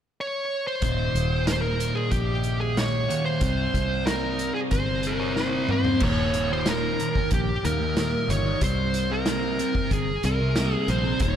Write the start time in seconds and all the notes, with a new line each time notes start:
0.21 C#5
0.67 C5
0.81 D#1 D#2 A#2 D#3, kick, closed hi-hat
1.15 D#1, closed hi-hat
1.47 A#4, snare, closed hi-hat
1.52 C5
1.61 A#4
1.80 closed hi-hat
1.95 G#4
2.11 A#1 G4, kick, closed hi-hat
2.44 closed hi-hat
2.61 G#4
2.77 C#5, snare, closed hi-hat
3.09 D#2 A#2 D#3, closed hi-hat
3.26 C5
3.40 C2 C3 G3 C4, kick, closed hi-hat
3.74 C2, kick, closed hi-hat
4.06 A#4, snare, closed hi-hat
4.39 closed hi-hat
4.55 G#4
4.71 G1 C5, kick, closed hi-hat
5.03 A#4, closed hi-hat
5.20 C#5
5.36 C5, snare
5.69 C3 G3 C4 C5, mid tom
5.85 floor tom
6.00 D#1 D#2 A#2 D#3 C#5, kick, crash
6.34 closed hi-hat
6.50 A#2 D#3 C5
6.65 D#2 A#2 D#3 A#4, snare, closed hi-hat
6.99 D#2 A#2 D#3, closed hi-hat
7.15 muted distorted electric guitar stroke, kick
7.31 A#1 G4, kick, closed hi-hat
7.63 D#2 A#2 D#3 A#4, closed hi-hat
7.80 muted distorted electric guitar stroke
7.95 D#2 A#2 D#3, snare, closed hi-hat
8.28 G1 D#2 A#2 D#3 C#5, closed hi-hat
8.45 A#2 D#3
8.60 C2 C3 G3 C4 C5, kick, closed hi-hat
8.94 closed hi-hat
9.10 G3 C4 A#4
9.26 C3 G3 C4, snare, closed hi-hat
9.59 C3 G3 C4, closed hi-hat
9.75 muted distorted electric guitar stroke, kick
9.91 G1 G#4, kick, closed hi-hat
10.23 C2 C3 G3 C4 A#4, closed hi-hat
10.40 muted distorted electric guitar stroke
10.55 C3 G3 C4, snare, closed hi-hat
10.75 G#4
10.88 A#1 C3 G3 C4 C5, closed hi-hat
11.04 G3 C4
11.20 D#1 D#2 A#2 D#3 C#5, kick, closed hi-hat